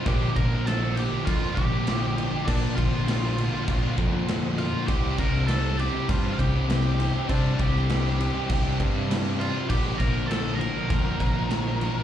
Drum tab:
CC |x-x-x-x-x-x-x-x-|x-x-x-x-x-x-x-x-|x-x-x-x-x-x-x-x-|x-x-x-x-x-x-x-x-|
SD |----o-------o---|----o-------o---|---oo-------o---|---oo-------o---|
BD |o-o-----o-o-----|o-o-----o-o-----|o-o-----o-o-----|o-o-----o-o-----|

CC |x-x-x-x-x-x-x-x-|
SD |----o-------o---|
BD |o-o-----o-o-----|